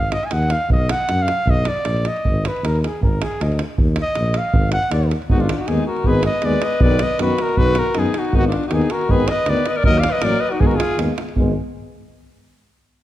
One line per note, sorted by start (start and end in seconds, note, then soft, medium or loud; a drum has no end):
0.00 0.15 G#1 medium
0.00 0.14 F5 medium
0.12 0.27 D#5 loud
0.12 davul high medium
0.23 0.34 G#5 medium
0.23 davul high soft
0.31 0.53 D#2 loud
0.31 0.53 F#5 loud
0.31 davul high medium
0.42 davul high soft
0.50 0.71 F5 loud
0.50 davul high medium
0.69 0.91 B1 medium
0.69 0.92 D#5 loud
0.69 davul low medium
0.89 1.23 F#5 loud
0.89 davul high medium
1.01 davul high soft
1.09 1.30 F#2 medium
1.09 davul high medium
1.19 1.51 F5 loud
1.19 davul high soft
1.28 davul high medium
1.46 1.68 B1 medium
1.46 1.70 D#5 loud
1.46 davul low medium
1.57 davul high soft
1.65 2.09 D5 loud
1.65 davul high medium
1.77 davul high soft
1.85 2.06 A#1 medium
1.85 davul high medium
1.96 davul high soft
2.05 2.48 D#5 medium
2.05 davul high medium
2.16 davul high soft
2.25 2.46 G#1 medium
2.25 davul low medium
2.45 2.67 B4 medium
2.45 davul high medium
2.56 davul high soft
2.63 2.84 D#2 medium
2.63 2.81 A#4 medium
2.63 davul high medium
2.75 davul high soft
2.81 2.88 A#4 medium
2.81 davul high medium
2.86 3.03 G#4 medium
3.01 3.22 G#1 medium
3.01 3.24 A#4 medium
3.01 davul low medium
3.22 3.44 G#4 medium
3.22 davul high medium
3.32 davul high soft
3.40 3.61 D2 loud
3.40 3.60 D#5 medium
3.40 davul high medium
3.52 davul high soft
3.59 davul high medium
3.78 3.99 D#2 medium
3.78 davul low medium
3.96 davul high medium
4.02 4.39 D#5 loud
4.15 4.37 A#1 medium
4.15 davul high medium
4.26 davul high soft
4.34 4.72 F5 loud
4.34 davul high medium
4.54 4.75 G#1 loud
4.54 davul low loud
4.72 4.90 F#5 loud
4.72 davul high medium
4.82 davul high soft
4.91 5.12 D#2 loud
4.91 5.10 D5 medium
4.91 davul high medium
5.03 davul high soft
5.11 davul high medium
5.22 davul high soft
5.30 5.50 G#1 loud
5.30 5.46 G#3 medium
5.30 5.45 B3 medium
5.30 5.42 D#4 medium
5.30 5.42 F#4 loud
5.30 davul low medium
5.40 5.63 D4 medium
5.40 5.60 F4 medium
5.40 davul high soft
5.49 davul high medium
5.58 5.69 D#4 medium
5.58 5.69 F#4 medium
5.58 davul high soft
5.68 5.79 D#2 medium
5.68 5.85 G#3 medium
5.68 5.84 B3 medium
5.68 5.86 D#4 medium
5.68 5.86 G#4 medium
5.68 davul high medium
5.78 davul high soft
5.87 6.09 F#4 medium
5.87 6.08 A#4 medium
5.96 davul high soft
6.04 6.27 G#1 loud
6.04 6.22 G#3 medium
6.04 6.21 B3 medium
6.04 6.25 G#4 loud
6.04 6.24 B4 loud
6.04 davul low medium
6.14 davul high soft
6.23 6.47 D#5 loud
6.23 davul high medium
6.27 6.45 B4 medium
6.33 davul high soft
6.42 6.54 D#2 medium
6.42 6.59 G#3 medium
6.42 6.58 B3 medium
6.42 6.64 B4 medium
6.42 6.65 D5 loud
6.42 davul high medium
6.53 davul high soft
6.62 6.82 B4 medium
6.62 6.84 D#5 loud
6.62 davul high medium
6.72 davul high soft
6.80 7.02 B1 loud
6.80 6.97 D#3 medium
6.80 6.97 B3 medium
6.80 7.02 B4 loud
6.80 7.04 D5 loud
6.80 davul low loud
6.91 davul high soft
6.99 7.20 B4 medium
6.99 7.20 D#5 loud
6.99 davul high medium
7.11 davul high soft
7.18 7.30 F#2 loud
7.18 7.34 D#3 medium
7.18 7.34 B3 medium
7.18 7.41 F#4 medium
7.18 7.43 B4 loud
7.18 davul high medium
7.30 davul high soft
7.38 7.57 F#4 medium
7.38 7.59 A#4 loud
7.38 davul high medium
7.49 davul high soft
7.57 7.78 B1 loud
7.57 7.73 D#3 medium
7.57 7.72 B3 medium
7.57 7.79 F#4 loud
7.57 7.80 B4 loud
7.57 davul low medium
7.75 7.98 F#4 medium
7.75 8.00 A#4 loud
7.75 davul high medium
7.87 davul high soft
7.94 8.06 F#2 medium
7.94 8.09 D#3 medium
7.94 8.11 B3 medium
7.94 8.14 D#4 medium
7.94 davul high medium
7.99 8.20 G#4 loud
8.06 davul high soft
8.14 8.33 D#4 medium
8.14 davul high medium
8.19 8.35 F#4 medium
8.25 davul high soft
8.32 8.53 G#1 loud
8.32 8.48 D#3 medium
8.32 8.50 B3 medium
8.32 8.43 D#4 medium
8.32 davul low medium
8.37 8.45 F#4 loud
8.43 davul high soft
8.47 8.63 D4 medium
8.47 8.63 F4 medium
8.52 davul high medium
8.63 8.75 F#4 medium
8.63 davul high soft
8.68 8.81 D#2 loud
8.68 8.86 D#3 medium
8.68 8.73 D#4 medium
8.68 davul high medium
8.73 8.88 B3 medium
8.73 8.92 D#4 medium
8.73 8.93 G#4 medium
8.82 davul high soft
8.90 9.12 F#4 medium
8.90 9.13 A#4 loud
8.90 davul high medium
9.01 davul high soft
9.08 9.29 G#1 loud
9.08 9.24 D#3 medium
9.08 9.26 B3 medium
9.08 9.34 G#4 loud
9.08 9.30 B4 loud
9.08 davul low medium
9.20 davul high soft
9.28 9.51 D#5 loud
9.28 davul high medium
9.32 9.50 B4 medium
9.39 davul high soft
9.45 9.56 D2 loud
9.45 9.62 D#3 medium
9.45 davul high medium
9.49 9.64 B3 medium
9.49 9.68 B4 medium
9.49 9.70 D5 loud
9.57 davul high soft
9.66 9.79 B4 medium
9.66 9.79 D#5 medium
9.66 davul high medium
9.76 9.84 A#4 medium
9.76 9.85 D5 loud
9.76 davul high soft
9.84 10.05 D#2 loud
9.84 9.99 F#3 medium
9.84 10.01 A#3 medium
9.84 10.00 A#4 loud
9.84 10.02 D#5 loud
9.84 davul low loud
9.94 10.12 D5 loud
9.94 davul high soft
10.00 10.14 F5 loud
10.00 davul high medium
10.10 10.23 B4 medium
10.10 10.26 D#5 loud
10.14 davul high soft
10.22 10.32 A1 medium
10.22 10.38 F#3 medium
10.22 10.38 A#3 medium
10.22 10.42 A#4 loud
10.22 10.42 D5 loud
10.22 davul high medium
10.32 davul high soft
10.41 10.54 B4 medium
10.41 10.52 D#5 loud
10.50 10.61 D#4 medium
10.50 10.62 F#4 loud
10.50 davul high soft
10.60 10.81 G#1 loud
10.60 10.76 G#3 medium
10.60 10.76 B3 medium
10.60 10.68 D#4 medium
10.60 10.68 G#4 loud
10.60 davul low loud
10.66 10.77 F#4 medium
10.66 10.78 A#4 medium
10.71 davul high soft
10.75 10.99 F4 loud
10.75 10.99 G#4 loud
10.80 davul high medium
10.91 davul high soft
10.97 11.08 D#2 loud
10.97 11.13 G#3 medium
10.97 11.13 B3 medium
10.97 davul high medium
11.18 davul high medium
11.29 davul high soft
11.35 11.53 G#1 loud
11.35 11.54 G#3 medium
11.35 11.54 B3 medium
11.35 davul low medium